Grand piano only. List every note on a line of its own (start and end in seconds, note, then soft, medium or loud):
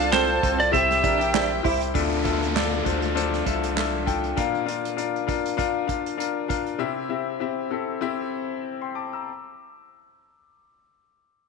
0.00 0.39 C3 medium
0.00 0.12 F4 loud
0.00 0.12 A4 medium
0.00 0.12 C5 loud
0.00 0.76 D5 medium
0.12 0.36 F4 medium
0.12 0.36 A4 medium
0.12 0.36 C5 medium
0.42 0.66 F4 medium
0.42 0.66 A4 medium
0.42 0.66 C5 medium
0.72 1.60 C3 medium
0.72 0.96 E4 medium
0.72 0.96 G4 medium
0.72 0.97 C5 loud
1.03 1.27 E4 medium
1.03 1.27 G4 medium
1.03 1.28 A#4 medium
1.34 1.57 E4 medium
1.34 1.57 G4 medium
1.34 1.58 C5 medium
1.63 1.87 E4 medium
1.63 1.88 G4 medium
1.63 1.88 C5 medium
1.94 2.82 D3 medium
1.94 2.18 D4 loud
1.94 2.18 F4 medium
1.94 2.18 A4 medium
1.94 2.18 E5 loud
2.23 2.48 D4 medium
2.23 2.48 F4 medium
2.23 2.48 A4 medium
2.23 2.48 E5 medium
2.55 2.79 D4 medium
2.55 2.79 F4 medium
2.55 2.79 A4 medium
2.55 2.79 D5 medium
2.85 3.09 D4 medium
2.85 3.09 F4 medium
2.85 3.09 A4 medium
2.85 3.09 C5 medium
3.15 3.39 D4 loud
3.15 3.39 F4 medium
3.15 3.39 A4 medium
3.15 3.39 C5 loud
3.45 3.69 D4 medium
3.45 3.69 F4 medium
3.45 3.70 A4 medium
3.45 3.70 E5 medium
3.75 4.00 D4 medium
3.75 4.00 F4 medium
3.75 4.00 A4 medium
3.75 4.00 E5 medium
4.05 4.30 D4 medium
4.05 4.30 F4 medium
4.05 4.30 A4 medium
4.05 4.30 G5 medium
4.36 5.24 A#2 medium
4.36 4.60 D4 medium
4.36 4.61 F4 medium
4.36 4.61 A#4 medium
4.36 4.61 F5 loud
4.66 4.90 D4 medium
4.66 4.90 F4 medium
4.66 4.91 A#4 medium
4.66 4.90 F5 medium
4.97 5.21 D4 medium
4.97 5.21 F4 medium
4.97 5.21 A#4 medium
4.97 5.21 F5 medium
5.27 5.51 D4 medium
5.27 5.51 F4 medium
5.27 5.51 A#4 medium
5.27 5.51 F5 medium
5.57 5.81 D4 medium
5.57 5.82 F4 medium
5.57 5.82 A#4 medium
5.57 5.82 F5 loud
5.87 6.11 D4 medium
5.87 6.12 F4 medium
5.87 6.12 A#4 medium
5.87 6.12 F5 medium
6.17 6.42 D4 medium
6.17 6.42 F4 medium
6.17 6.42 A#4 medium
6.17 6.42 F5 medium
6.48 6.73 D4 medium
6.48 6.73 F4 medium
6.48 6.73 A#4 medium
6.48 6.73 F5 medium
6.79 7.67 C3 medium
6.79 7.03 C4 medium
6.79 7.03 E4 medium
6.79 7.03 G4 medium
6.79 7.03 E5 loud
7.09 7.33 C4 medium
7.09 7.33 E4 medium
7.09 7.34 G4 medium
7.09 7.34 E5 medium
7.40 7.64 C4 medium
7.40 7.64 E4 medium
7.40 7.64 G4 medium
7.40 7.65 E5 medium
7.70 7.95 C4 medium
7.70 7.95 E4 medium
7.70 7.95 G4 medium
7.70 7.95 A4 medium
8.01 8.25 C4 medium
8.01 8.26 E4 medium
8.01 8.26 G4 medium
8.01 8.26 E5 loud
8.81 8.95 G5 soft
8.81 8.95 C6 medium
8.95 9.13 A5 soft
8.95 9.12 D6 medium
9.13 9.44 A#5 soft
9.13 9.44 E6 medium